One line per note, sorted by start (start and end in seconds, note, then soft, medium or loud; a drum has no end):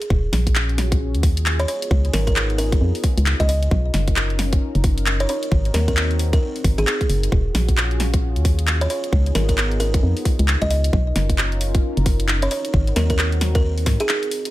0.02 closed hi-hat medium
0.10 0.29 D#1 loud
0.10 1.67 C#4 medium
0.10 5.25 F4 medium
0.10 1.67 F#4 medium
0.10 3.68 G#4 medium
0.10 kick loud
0.33 1.16 A#1 medium
0.33 snare medium
0.33 open hi-hat loud
0.47 kick medium
0.47 closed hi-hat medium
0.55 clap loud
0.69 closed hi-hat soft
0.78 snare medium
0.78 open hi-hat loud
0.92 kick loud
0.92 closed hi-hat medium
1.15 1.66 D#2 loud
1.15 closed hi-hat medium
1.23 kick loud
1.23 open hi-hat loud
1.37 closed hi-hat medium
1.46 clap loud
1.59 1.65 C#5 medium
1.59 closed hi-hat medium
1.68 3.69 B3 medium
1.68 3.69 D#4 medium
1.68 1.77 C#5 medium
1.68 open hi-hat loud
1.82 closed hi-hat medium
1.91 2.10 C#2 loud
1.91 kick loud
2.05 closed hi-hat soft
2.13 2.78 G#1 medium
2.13 2.22 A#4 medium
2.13 snare medium
2.13 open hi-hat loud
2.27 2.33 A#4 medium
2.27 kick medium
2.27 closed hi-hat medium
2.36 clap loud
2.50 closed hi-hat soft
2.58 2.79 A#4 medium
2.58 open hi-hat loud
2.72 kick loud
2.72 closed hi-hat medium
2.81 2.92 F2 medium
2.95 open hi-hat medium
3.04 kick loud
3.04 open hi-hat loud
3.17 3.34 C#2 loud
3.17 closed hi-hat medium
3.26 clap loud
3.40 3.68 C#2 medium
3.40 3.46 D#5 medium
3.40 kick medium
3.40 closed hi-hat medium
3.49 3.58 D#5 medium
3.49 open hi-hat loud
3.63 closed hi-hat medium
3.71 3.90 B1 loud
3.71 5.28 C#4 medium
3.71 7.29 D#4 medium
3.71 7.29 A#4 medium
3.71 kick loud
3.94 4.59 F#1 medium
3.94 snare medium
3.94 open hi-hat loud
4.08 kick medium
4.08 closed hi-hat medium
4.16 clap loud
4.30 closed hi-hat soft
4.39 snare medium
4.39 open hi-hat loud
4.53 kick loud
4.53 closed hi-hat medium
4.75 5.26 F#1 loud
4.75 closed hi-hat soft
4.84 kick loud
4.84 open hi-hat loud
4.98 closed hi-hat medium
5.06 clap loud
5.20 5.26 C#5 medium
5.20 closed hi-hat soft
5.29 7.30 C4 medium
5.29 7.30 F#4 medium
5.29 5.38 C#5 medium
5.29 open hi-hat loud
5.43 closed hi-hat medium
5.52 5.71 G#1 loud
5.52 kick loud
5.65 closed hi-hat soft
5.74 6.39 D#2 medium
5.74 5.83 A#4 medium
5.74 snare medium
5.74 open hi-hat loud
5.88 5.94 A#4 medium
5.88 kick medium
5.88 closed hi-hat medium
5.97 clap loud
6.11 closed hi-hat soft
6.19 open hi-hat loud
6.33 6.52 A#4 medium
6.33 kick loud
6.33 closed hi-hat medium
6.56 open hi-hat medium
6.64 6.75 G#1 medium
6.64 kick loud
6.64 open hi-hat loud
6.78 6.85 G#1 medium
6.78 6.84 G#4 medium
6.78 closed hi-hat medium
6.87 6.96 G#4 medium
6.87 clap loud
7.01 kick medium
7.01 closed hi-hat soft
7.10 7.29 F#1 medium
7.10 open hi-hat loud
7.23 closed hi-hat medium
7.32 7.51 D#1 loud
7.32 8.89 C#4 medium
7.32 10.89 F4 medium
7.32 8.89 F#4 medium
7.32 10.90 G#4 medium
7.32 kick loud
7.55 8.38 A#1 medium
7.55 snare medium
7.55 open hi-hat loud
7.69 kick medium
7.69 closed hi-hat medium
7.77 clap loud
7.91 closed hi-hat soft
8.00 snare medium
8.00 open hi-hat loud
8.14 kick loud
8.14 closed hi-hat medium
8.36 8.87 D#2 loud
8.36 closed hi-hat medium
8.45 kick loud
8.45 open hi-hat loud
8.59 closed hi-hat medium
8.67 clap loud
8.81 8.87 C#5 medium
8.81 closed hi-hat medium
8.90 10.91 B3 medium
8.90 10.91 D#4 medium
8.90 8.99 C#5 medium
8.90 open hi-hat loud
9.04 closed hi-hat medium
9.13 9.32 C#2 loud
9.13 kick loud
9.26 closed hi-hat soft
9.35 10.00 G#1 medium
9.35 9.44 A#4 medium
9.35 snare medium
9.35 open hi-hat loud
9.49 9.54 A#4 medium
9.49 kick medium
9.49 closed hi-hat medium
9.58 clap loud
9.72 closed hi-hat soft
9.80 10.00 A#4 medium
9.80 open hi-hat loud
9.94 kick loud
9.94 closed hi-hat medium
10.03 10.14 F2 medium
10.17 open hi-hat medium
10.25 kick loud
10.25 open hi-hat loud
10.39 10.56 C#2 loud
10.39 closed hi-hat medium
10.48 clap loud
10.62 10.90 C#2 medium
10.62 10.67 D#5 medium
10.62 kick medium
10.62 closed hi-hat medium
10.71 10.79 D#5 medium
10.71 open hi-hat loud
10.84 closed hi-hat medium
10.93 11.12 B1 loud
10.93 12.49 C#4 medium
10.93 14.50 D#4 medium
10.93 12.49 F4 medium
10.93 14.50 A#4 medium
10.93 kick loud
11.16 11.81 F#1 medium
11.16 snare medium
11.16 open hi-hat loud
11.30 kick medium
11.30 closed hi-hat medium
11.38 clap loud
11.52 closed hi-hat soft
11.61 open hi-hat loud
11.75 kick loud
11.75 closed hi-hat medium
11.97 12.48 F#1 loud
11.97 closed hi-hat medium
12.06 kick loud
12.06 open hi-hat loud
12.20 closed hi-hat medium
12.28 clap loud
12.42 12.48 C#5 medium
12.42 closed hi-hat medium
12.51 14.51 C4 medium
12.51 14.51 F#4 medium
12.51 12.60 C#5 medium
12.51 open hi-hat loud
12.65 closed hi-hat medium
12.74 12.93 G#1 loud
12.74 kick loud
12.87 closed hi-hat soft
12.96 13.88 D#2 medium
12.96 13.05 A#4 medium
12.96 snare medium
12.96 open hi-hat loud
13.10 13.16 A#4 medium
13.10 kick medium
13.10 closed hi-hat medium
13.19 clap loud
13.32 closed hi-hat soft
13.41 snare medium
13.41 open hi-hat loud
13.55 13.74 A#4 medium
13.55 kick loud
13.55 closed hi-hat medium
13.78 open hi-hat medium
13.86 13.97 G#2 medium
13.86 kick loud
13.86 snare medium
13.86 open hi-hat loud
14.00 14.06 G#4 loud
14.00 closed hi-hat medium
14.09 14.18 G#4 medium
14.09 clap loud
14.23 closed hi-hat medium
14.31 open hi-hat loud
14.45 closed hi-hat medium